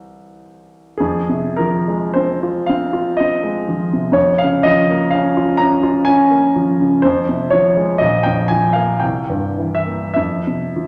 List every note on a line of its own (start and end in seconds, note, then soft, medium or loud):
0.00 0.93 C2 soft
0.00 0.93 E3 soft
0.00 0.94 G3 soft
0.00 0.94 C4 soft
0.00 0.41 C5 medium
0.97 4.10 F2 soft
0.97 1.56 G#4 medium
1.29 1.75 C3 soft
1.56 2.04 F3 soft
1.56 2.14 A#4 medium
1.88 2.31 G#3 soft
2.13 2.58 C4 soft
2.13 2.67 C5 medium
2.43 2.84 F4 soft
2.66 3.09 C4 soft
2.66 3.17 F5 medium
2.93 3.33 F4 soft
3.17 3.59 C4 soft
3.17 4.16 D#5 medium
3.43 3.82 G#3 soft
3.68 4.07 F3 soft
3.93 4.17 C3 soft
4.12 6.98 F2 medium
4.12 4.39 C#5 medium
4.38 4.79 C#3 soft
4.38 4.63 F5 medium
4.63 5.03 F3 soft
4.63 5.11 D#5 medium
4.91 5.27 A#3 soft
5.11 5.51 C#4 soft
5.11 5.59 F5 medium
5.37 5.74 F4 soft
5.57 5.98 C#4 soft
5.57 6.06 A#5 medium
5.83 6.21 F4 medium
6.05 6.46 C#4 soft
6.05 7.03 G#5 medium
6.31 6.70 A#3 soft
6.56 6.95 F3 soft
6.80 7.04 C#3 soft
7.02 7.98 F2 medium
7.02 7.51 C5 medium
7.29 7.67 C3 soft
7.51 7.91 F3 soft
7.51 8.00 C#5 medium
7.77 8.01 G#3 soft
7.98 8.99 A#1 medium
7.98 8.24 D#5 medium
8.23 8.65 F2 soft
8.23 8.49 G5 medium
8.48 8.91 F3 soft
8.48 8.74 G#5 medium
8.73 9.02 A#3 soft
8.73 9.00 F5 medium
9.00 10.15 C2 medium
9.00 9.76 G5 medium
9.29 9.76 G2 soft
9.58 10.06 E3 soft
9.75 10.12 E5 medium
9.86 10.17 A#3 soft
10.14 10.87 F2 soft
10.14 10.87 E5 medium
10.47 10.87 C3 soft
10.76 10.87 F3 soft